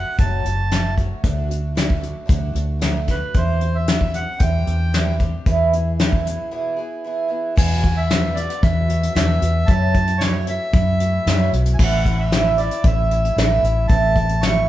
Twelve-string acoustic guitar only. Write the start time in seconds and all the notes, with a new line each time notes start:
Already playing: F#3 A3 C#4 F#4
0.17 F#2 C#3 F#3 A3 C#4 F#4
0.45 F#3 A3 C#4 F#4
0.71 F#3 A3 C#4 F#4
0.97 F#3 A3 C#4 F#4
1.24 D3 A3 D4 F#4
1.49 A3 D4 F#4
1.75 D3 A3 D4 F#4
2.01 A3 D4 F#4
2.26 D3 A3 D4 F#4
2.53 A3 D4 F#4
2.79 D3 A3 D4
2.83 F#4
3.08 A3 D4 F#4
3.34 E3 C4 D4 G4
3.61 C4 D4 G4
3.88 E3 C4 D4 G4
4.15 C4 D4 G4
4.38 E3 C4 D4 G4
4.66 C4 D4 G4
4.93 E3 C4 D4 G4
5.19 C4 D4 G4
5.46 E2 B2 E3 B3 E4 G#4
5.72 E3 B3 E4 G#4
6.01 E3 B3 E4 G#4
6.25 E3 B3 E4 G#4
6.51 E2 B2 E3 B3 E4 G#4
6.77 E3 B3 E4 G#4
7.04 E3 B3 E4 G#4
7.28 E3 B3 E4 G#4
7.56 E2 B2 F#3 G#3 B3 F#4
7.82 F#3 G#3 B3 F#4
8.10 E2 B2 F#3 G#3 B3 F#4
8.37 F#3 G#3 B3 F#4
8.62 F#3 G#3 B3 F#4
8.88 F#3 G#3 B3 F#4
9.15 E2 B2 F#3 G#3 B3 F#4
9.42 F#3 G#3 B3 F#4
9.68 F#2 C#3 E3 A3 C#4 F#4
9.95 E3 A3 C#4 F#4
10.22 F#2 C#3 E3 A3 C#4 F#4
10.48 E3 A3 C#4 F#4
10.73 E3 A3 C#4
10.77 F#4
11.00 E3 A3 C#4 F#4
11.28 F#2 C#3 E3 A3 C#4 F#4
11.54 E3 A3 C#4 F#4
11.79 A2 E3 A3 C#4 E4
12.07 A3 C#4 E4
12.32 A2 E3 A3 C#4 E4
12.59 A3 C#4 E4
12.85 E3 A3 C#4 E4
13.11 A3 C#4 E4
13.37 A2 E3 A3 C#4 E4
13.64 A3 C#4 E4
13.88 A2 E3 A3 C#4 E4
14.16 A3 C#4 E4
14.42 A2 E3 A3 C#4 E4